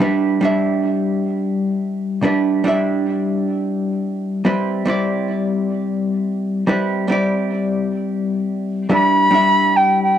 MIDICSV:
0, 0, Header, 1, 3, 480
1, 0, Start_track
1, 0, Key_signature, 1, "minor"
1, 0, Tempo, 500000
1, 9778, End_track
2, 0, Start_track
2, 0, Title_t, "Flute"
2, 0, Program_c, 0, 73
2, 8575, Note_on_c, 0, 83, 114
2, 9369, Note_on_c, 0, 79, 90
2, 9383, Note_off_c, 0, 83, 0
2, 9621, Note_off_c, 0, 79, 0
2, 9627, Note_on_c, 0, 79, 90
2, 9778, Note_off_c, 0, 79, 0
2, 9778, End_track
3, 0, Start_track
3, 0, Title_t, "Hollow-body jazz guitar"
3, 0, Program_c, 1, 26
3, 0, Note_on_c, 1, 55, 84
3, 5, Note_on_c, 1, 62, 77
3, 12, Note_on_c, 1, 64, 74
3, 17, Note_on_c, 1, 71, 88
3, 379, Note_off_c, 1, 55, 0
3, 383, Note_off_c, 1, 62, 0
3, 386, Note_off_c, 1, 64, 0
3, 389, Note_off_c, 1, 71, 0
3, 393, Note_on_c, 1, 55, 88
3, 408, Note_on_c, 1, 62, 80
3, 421, Note_on_c, 1, 64, 82
3, 430, Note_on_c, 1, 76, 99
3, 2104, Note_off_c, 1, 55, 0
3, 2112, Note_off_c, 1, 62, 0
3, 2118, Note_off_c, 1, 64, 0
3, 2123, Note_off_c, 1, 76, 0
3, 2136, Note_on_c, 1, 55, 83
3, 2145, Note_on_c, 1, 62, 80
3, 2151, Note_on_c, 1, 64, 75
3, 2158, Note_on_c, 1, 71, 93
3, 2515, Note_off_c, 1, 55, 0
3, 2519, Note_off_c, 1, 62, 0
3, 2522, Note_off_c, 1, 64, 0
3, 2526, Note_off_c, 1, 71, 0
3, 2534, Note_on_c, 1, 55, 89
3, 2546, Note_on_c, 1, 62, 83
3, 2559, Note_on_c, 1, 64, 76
3, 2571, Note_on_c, 1, 76, 90
3, 4241, Note_off_c, 1, 55, 0
3, 4247, Note_off_c, 1, 62, 0
3, 4254, Note_off_c, 1, 64, 0
3, 4260, Note_off_c, 1, 76, 0
3, 4268, Note_on_c, 1, 55, 87
3, 4273, Note_on_c, 1, 60, 77
3, 4280, Note_on_c, 1, 64, 81
3, 4285, Note_on_c, 1, 71, 99
3, 4648, Note_off_c, 1, 55, 0
3, 4650, Note_off_c, 1, 60, 0
3, 4654, Note_off_c, 1, 64, 0
3, 4656, Note_off_c, 1, 71, 0
3, 4660, Note_on_c, 1, 55, 90
3, 4673, Note_on_c, 1, 60, 81
3, 4686, Note_on_c, 1, 64, 85
3, 4699, Note_on_c, 1, 74, 97
3, 6371, Note_off_c, 1, 55, 0
3, 6377, Note_off_c, 1, 60, 0
3, 6384, Note_off_c, 1, 64, 0
3, 6391, Note_off_c, 1, 74, 0
3, 6404, Note_on_c, 1, 55, 82
3, 6412, Note_on_c, 1, 60, 73
3, 6417, Note_on_c, 1, 64, 76
3, 6423, Note_on_c, 1, 71, 93
3, 6782, Note_off_c, 1, 55, 0
3, 6786, Note_off_c, 1, 60, 0
3, 6789, Note_off_c, 1, 64, 0
3, 6792, Note_off_c, 1, 71, 0
3, 6796, Note_on_c, 1, 55, 88
3, 6811, Note_on_c, 1, 60, 82
3, 6823, Note_on_c, 1, 64, 82
3, 6836, Note_on_c, 1, 74, 95
3, 8506, Note_off_c, 1, 55, 0
3, 8513, Note_off_c, 1, 60, 0
3, 8519, Note_off_c, 1, 64, 0
3, 8526, Note_off_c, 1, 74, 0
3, 8538, Note_on_c, 1, 55, 87
3, 8545, Note_on_c, 1, 62, 72
3, 8550, Note_on_c, 1, 64, 83
3, 8558, Note_on_c, 1, 71, 77
3, 8916, Note_off_c, 1, 55, 0
3, 8919, Note_off_c, 1, 62, 0
3, 8923, Note_off_c, 1, 64, 0
3, 8924, Note_off_c, 1, 71, 0
3, 8934, Note_on_c, 1, 55, 89
3, 8943, Note_on_c, 1, 62, 75
3, 8961, Note_on_c, 1, 64, 76
3, 8972, Note_on_c, 1, 76, 91
3, 9778, Note_off_c, 1, 55, 0
3, 9778, Note_off_c, 1, 62, 0
3, 9778, Note_off_c, 1, 64, 0
3, 9778, Note_off_c, 1, 76, 0
3, 9778, End_track
0, 0, End_of_file